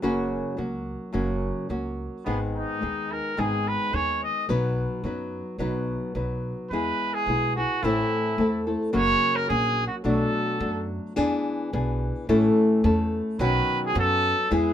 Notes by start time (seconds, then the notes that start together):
0.02 F#1 F#2 C#3 F#3 A#3 C#4 F#4
0.57 C#2 F#3 A#3 C#4 F#4
1.13 F#1 F#2 C#3 F#3 A#3 C#4 F#4
1.69 C#2 F#3 A#3 C#4 F#4
2.25 G#1 G#2 D#3 G#3 B3 D#4 G#4
2.55 D#4
2.81 D#2 G#3 B3 D#4 G#4
3.12 A#4
3.37 G#1 G#2 D#3 G#3 B3 D#4 G#4
3.68 B4
3.93 D#2 G#3 B3 D#4 G#4 C#5
4.24 D#5
4.49 B1 B2 F#3 B3 D#4 B4
5.04 F#2 F#3 B3 D#4 B4
5.58 B1 B2 F#3 B3 D#4 B4
6.15 B1 F#3 B3 D#4 B4
6.70 E2 E3 G#3 B3 E4 G#4 B4
7.14 G#4
7.27 B1 G#3 B3 E4 G#4
7.56 B3 E4 F#4 G#4
7.83 A1 A2 E3 A3 C4 E4 A4
8.38 E2 A3 C4 E4 A4
8.67 A3 C4 E4 A4
8.93 F#1 F#2 C#3 F#3 A#3 C#4 F#4 C#5
9.36 A#4
9.49 A#1 F#3 A#3 C#4 F#4 G#4
9.87 F#4
10.04 B1 B2 F#3 A3 D4 F#4 A4
10.60 F#2 F#3 A3 D4 F#4
11.16 E2 E3 B3 D4 G#4
11.73 B1 E3 B3 D4 G#4
12.29 A1 A2 E3 A3 C#4 E4 A4
12.84 E2 A3 C#4 E4 A4
13.39 B1 B2 D#3 F#3 B3 C#4 F#4 B4
13.86 G#4
13.95 F#2 F#3 B3 C#4 F#4
13.99 A4
14.51 E2 E3 G#3 B3 E4 G#4
14.56 G#4